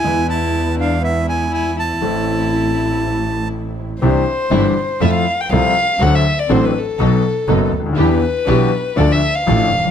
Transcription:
X:1
M:4/4
L:1/16
Q:1/4=121
K:Am
V:1 name="Bandoneon"
^g2 a4 f2 e2 g2 g2 a2- | a12 z4 | [K:C] z16 | z16 |
z16 |]
V:2 name="Violin"
E2 E4 D2 B,2 E2 E2 E2- | E12 z4 | [K:C] c8 e f2 g f4 | ^f e2 d c B A8 z2 |
B8 d e2 f4- f |]
V:3 name="String section"
[^G,B,E]16 | [A,CE]16 | [K:C] [CDE]2 z2 [CDE]2 z2 [A,EF]2 z2 [A,EF]2 z2 | [CD^F]2 z2 [CDF]2 z2 [B,^DA]2 z2 [B,DA]2 z2 |
[DEG]2 z2 [DEG]2 z2 [DFA]2 z2 [DFA]2 z2 |]
V:4 name="Grand piano" clef=bass
[E,,E,^G,B,B]16 | [A,,,A,,E,A,CA]16 | [K:C] [C,,C,E,CDG]2 z2 [G,,,G,,E,CDG]2 z2 [F,,F,CEA]2 z2 [C,,C,F,CEA]2 z2 | [D,,D,^F,CDA]2 z2 [A,,,A,,F,CDA]2 z2 [B,,,B,,F,B,^DA]2 z2 [^F,,,^F,,F,B,DA]2 z/2 _D,,/2 =D,,/2 ^D,,/2 |
[E,,E,B,DG]2 z2 [B,,,B,,E,B,DG]2 z2 [D,,D,F,A,DA]2 z2 [A,,,A,,F,A,DA]2 z/2 E,,/2 F,,/2 z/2 |]
V:5 name="Double bass" clef=bass
E,,16 | A,,,16 | [K:C] C,,2 z2 G,,,2 z2 F,,2 z2 C,,2 z2 | D,,2 z2 A,,,2 z2 B,,,2 z2 ^F,,,2 D,,2 |
E,,2 z2 B,,,2 z2 D,,2 z2 A,,,2 F,,,2 |]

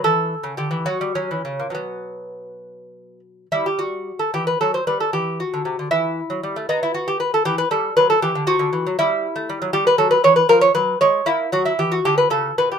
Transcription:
X:1
M:6/8
L:1/16
Q:3/8=77
K:F#phr
V:1 name="Lute"
A4 G2 F2 C4 | B,8- B,2 z2 | [K:Em] E G F3 A G B A c B A | G2 F4 E6 |
^D E F G B A G B A2 B A | G2 F4 E6 | [K:F#phr] G B A B c B ^A c B2 c2 | E2 F E G F G B A2 B G |]
V:2 name="Lute" clef=bass
E,3 C, D, E, F, G, F, E, C, ^A,, | [B,,F,]12 | [K:Em] G,6 E,2 F,2 G,2 | E,3 D, C, D, E,3 F, G, A, |
B,6 E,2 G,2 F,2 | E, D, C, D, E, F, G,3 A, G, F, | [K:F#phr] G,2 F,2 E,2 ^E,2 F,2 ^G,2 | ^A,2 F,2 E,2 D,2 C,2 B,,2 |]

